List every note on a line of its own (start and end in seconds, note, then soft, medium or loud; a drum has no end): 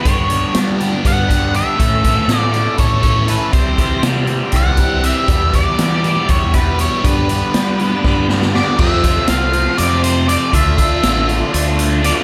0.03 0.55 G2 medium
0.03 0.43 G2 medium
0.03 0.55 D3 medium
0.03 0.30 G3 medium
0.03 0.30 B3 medium
0.03 0.29 D4 medium
0.03 0.28 G4 medium
0.03 0.56 C#5 medium
0.03 kick medium
0.03 closed hi-hat medium
0.29 0.52 G3 soft
0.29 0.53 B3 medium
0.29 0.54 D4 medium
0.29 0.54 G4 medium
0.29 closed hi-hat medium
0.53 0.79 G3 medium
0.53 0.93 G3 medium
0.53 0.78 B3 medium
0.53 0.78 D4 medium
0.53 0.77 G4 medium
0.53 snare medium
0.53 closed hi-hat medium
0.78 1.29 G2 medium
0.78 1.28 D3 medium
0.78 1.02 G3 medium
0.78 1.02 B3 medium
0.78 1.03 D4 medium
0.78 1.03 G4 medium
0.78 snare soft
0.78 closed hi-hat soft
1.03 1.62 G2 medium
1.03 1.28 G3 medium
1.03 1.27 B3 medium
1.03 1.27 D4 medium
1.03 1.27 G4 medium
1.03 kick medium
1.03 closed hi-hat medium
1.07 1.56 F#5 medium
1.28 1.78 G2 medium
1.28 1.77 D3 medium
1.28 1.52 G3 medium
1.28 1.53 B3 medium
1.28 1.53 D4 medium
1.28 1.54 G4 medium
1.28 kick medium
1.28 closed hi-hat medium
1.53 1.77 G3 medium
1.53 1.77 B3 medium
1.53 1.78 D4 medium
1.53 1.78 G4 medium
1.53 2.38 E5 medium
1.53 closed hi-hat soft
1.77 2.28 A2 medium
1.77 2.18 A2 medium
1.77 2.27 E3 medium
1.77 2.03 A3 medium
1.77 2.02 C#4 medium
1.77 2.02 A4 medium
1.77 3.53 A4 medium
1.77 5.25 E5 soft
1.77 3.52 C#6 soft
1.77 3.52 E6 medium
1.77 kick medium
1.77 closed hi-hat medium
2.03 2.27 A3 medium
2.03 2.27 C#4 medium
2.03 2.28 A4 medium
2.03 kick medium
2.03 snare soft
2.03 closed hi-hat medium
2.27 2.66 A2 medium
2.27 2.53 E3 medium
2.27 2.52 A3 medium
2.27 2.51 C#4 medium
2.27 2.50 A4 medium
2.27 snare medium
2.27 closed hi-hat medium
2.38 2.76 D5 medium
2.51 3.03 A2 medium
2.51 2.76 E3 medium
2.51 2.77 A3 medium
2.51 2.77 C#4 medium
2.51 2.78 A4 medium
2.51 closed hi-hat soft
2.77 3.36 A2 medium
2.77 3.03 E3 medium
2.77 3.02 A3 medium
2.77 3.01 C#4 medium
2.77 3.01 A4 medium
2.77 3.29 C#5 medium
2.77 kick medium
2.77 closed hi-hat medium
3.02 3.51 A2 medium
3.02 3.26 E3 medium
3.02 3.26 A3 medium
3.02 3.27 C#4 medium
3.02 3.27 A4 medium
3.02 kick medium
3.02 closed hi-hat soft
3.26 3.52 E3 medium
3.26 3.51 A3 medium
3.26 3.52 C#4 medium
3.26 3.52 A4 medium
3.26 3.53 B4 medium
3.26 closed hi-hat soft
3.52 3.91 C2 medium
3.52 4.02 C3 medium
3.52 4.02 E3 medium
3.52 3.79 G3 medium
3.52 3.77 C4 medium
3.52 5.26 G4 medium
3.52 3.77 G4 medium
3.52 4.06 C5 medium
3.52 5.27 C6 soft
3.52 5.27 E6 medium
3.52 kick medium
3.52 closed hi-hat medium
3.77 4.03 G3 soft
3.77 4.02 C4 medium
3.77 4.04 G4 medium
3.77 kick medium
3.77 closed hi-hat medium
4.02 4.41 C3 medium
4.02 4.27 E3 medium
4.02 4.28 G3 medium
4.02 4.26 C4 medium
4.02 4.26 G4 medium
4.02 snare loud
4.02 closed hi-hat medium
4.27 4.78 C3 medium
4.27 4.51 E3 medium
4.27 4.52 G3 medium
4.27 4.52 C4 medium
4.27 4.54 G4 medium
4.27 closed hi-hat soft
4.52 5.10 C2 medium
4.52 4.78 E3 medium
4.52 4.78 G3 medium
4.52 4.77 C4 medium
4.52 4.78 G4 medium
4.52 kick medium
4.52 closed hi-hat medium
4.57 5.05 F#5 medium
4.77 5.27 C3 medium
4.77 5.01 E3 medium
4.77 5.03 G3 medium
4.77 5.03 C4 medium
4.77 5.04 G4 medium
4.77 kick medium
4.77 closed hi-hat medium
5.03 5.26 E3 medium
5.03 5.29 G3 medium
5.03 5.27 C4 medium
5.03 5.30 G4 medium
5.03 5.56 E5 medium
5.03 closed hi-hat medium
5.28 5.78 E2 medium
5.28 5.66 E2 medium
5.28 5.79 B2 medium
5.28 5.54 E3 medium
5.28 5.55 G3 medium
5.28 5.54 B3 medium
5.28 8.74 G4 medium
5.28 5.53 G4 medium
5.28 7.02 E5 medium
5.28 7.02 B5 medium
5.28 7.01 E6 medium
5.28 kick medium
5.28 closed hi-hat medium
5.53 5.78 E3 medium
5.53 5.79 G3 medium
5.53 5.80 B3 medium
5.53 5.81 G4 medium
5.53 6.30 D5 medium
5.53 kick medium
5.53 closed hi-hat medium
5.79 6.17 E3 medium
5.79 6.04 E3 medium
5.79 6.03 G3 medium
5.79 6.03 B3 medium
5.79 6.03 G4 medium
5.79 snare loud
5.79 closed hi-hat medium
6.04 6.54 E2 medium
6.04 6.54 B2 medium
6.04 6.28 E3 medium
6.04 6.28 G3 medium
6.04 6.29 B3 medium
6.04 6.29 G4 medium
6.04 closed hi-hat soft
6.29 6.86 E2 medium
6.29 6.54 E3 medium
6.29 6.54 G3 medium
6.29 6.53 B3 medium
6.29 6.53 G4 medium
6.29 6.53 C#5 medium
6.29 kick medium
6.29 closed hi-hat medium
6.54 7.03 E2 medium
6.54 7.03 B2 medium
6.54 6.78 E3 medium
6.54 6.78 G3 medium
6.54 6.79 B3 medium
6.54 6.79 G4 medium
6.54 6.77 B4 medium
6.54 kick medium
6.54 closed hi-hat medium
6.79 7.02 E3 medium
6.79 7.02 G3 medium
6.79 7.02 B3 medium
6.79 7.03 G4 medium
6.79 7.05 C#5 medium
6.79 closed hi-hat medium
7.03 7.53 G2 medium
7.03 7.42 G2 medium
7.03 7.53 D3 medium
7.03 7.30 G3 medium
7.03 7.29 B3 medium
7.03 7.28 D4 medium
7.03 7.28 G4 medium
7.03 8.26 B4 medium
7.03 8.78 D5 medium
7.03 8.78 B5 soft
7.03 8.78 D6 medium
7.03 kick medium
7.03 closed hi-hat medium
7.29 7.52 G3 soft
7.29 7.53 B3 medium
7.29 7.53 D4 medium
7.29 7.54 G4 medium
7.29 closed hi-hat medium
7.53 7.79 G3 medium
7.53 7.92 G3 medium
7.53 7.78 B3 medium
7.53 7.78 D4 medium
7.53 7.77 G4 medium
7.53 snare loud
7.53 closed hi-hat medium
7.79 8.29 G2 medium
7.79 8.29 D3 medium
7.79 8.03 G3 medium
7.79 8.04 B3 medium
7.79 8.04 D4 medium
7.79 8.05 G4 medium
7.79 closed hi-hat soft
8.04 8.61 G2 medium
8.04 8.29 G3 medium
8.04 8.29 B3 medium
8.04 8.28 D4 medium
8.04 8.27 G4 medium
8.04 kick medium
8.04 snare soft
8.29 8.78 G2 medium
8.29 8.78 D3 medium
8.29 8.52 G3 medium
8.29 8.53 B3 medium
8.29 8.54 D4 medium
8.29 8.54 G4 medium
8.29 snare medium
8.42 snare medium
8.53 8.77 G3 medium
8.53 8.77 B3 medium
8.53 8.77 D4 medium
8.53 8.78 G4 medium
8.53 8.78 D5 medium
8.53 snare medium
8.78 9.28 F2 medium
8.78 9.17 F2 medium
8.78 9.28 C3 medium
8.78 9.04 F3 medium
8.78 9.04 A3 medium
8.78 9.02 C4 medium
8.78 12.24 F4 medium
8.78 9.03 F4 medium
8.78 10.52 C5 soft
8.78 9.29 E5 loud
8.78 12.24 A5 soft
8.78 10.51 C6 medium
8.78 kick loud
8.78 crash medium
9.03 9.27 F3 medium
9.03 9.28 A3 medium
9.03 9.28 C4 medium
9.03 9.29 F4 medium
9.03 kick medium
9.03 closed hi-hat medium
9.27 9.67 C2 medium
9.27 9.55 F3 medium
9.27 9.54 A3 medium
9.27 9.52 C4 medium
9.27 9.52 F4 medium
9.27 9.80 F5 medium
9.27 snare loud
9.27 closed hi-hat medium
9.52 9.77 F3 medium
9.52 9.77 A3 medium
9.52 9.77 C4 medium
9.52 9.78 F4 medium
9.52 closed hi-hat soft
9.77 10.51 F2 medium
9.77 10.36 F2 medium
9.77 10.51 C3 medium
9.77 10.27 F3 medium
9.77 10.28 A3 medium
9.77 10.28 C4 medium
9.77 10.29 F4 medium
9.77 10.03 D5 medium
9.77 closed hi-hat medium
10.03 10.28 C5 medium
10.03 closed hi-hat medium
10.27 10.52 F3 medium
10.27 10.53 A3 medium
10.27 10.52 C4 medium
10.27 10.54 F4 medium
10.27 10.51 D5 medium
10.27 closed hi-hat medium
10.52 10.92 D2 medium
10.52 11.01 D3 medium
10.52 10.78 A3 medium
10.52 10.77 D4 medium
10.52 10.76 F4 loud
10.52 12.24 D5 medium
10.52 12.24 E5 medium
10.52 11.25 E5 medium
10.52 kick loud
10.52 closed hi-hat medium
10.77 11.03 A3 medium
10.77 11.02 D4 medium
10.77 11.04 F4 medium
10.77 kick medium
10.77 closed hi-hat medium
11.02 11.41 A1 loud
11.02 11.51 D3 medium
11.02 11.28 A3 medium
11.02 11.26 D4 medium
11.02 11.26 F4 medium
11.02 snare loud
11.02 closed hi-hat medium
11.27 11.53 A3 medium
11.27 11.52 D4 medium
11.27 11.53 F4 medium
11.27 closed hi-hat soft
11.52 12.11 D2 medium
11.52 12.01 D3 medium
11.52 12.02 A3 medium
11.52 12.02 D4 medium
11.52 12.03 F4 loud
11.52 closed hi-hat medium
11.79 closed hi-hat medium
12.02 12.24 D3 medium
12.02 12.24 A3 medium
12.02 12.24 D4 medium
12.02 12.24 F4 medium
12.02 12.12 D5 medium
12.02 snare soft
12.02 closed hi-hat medium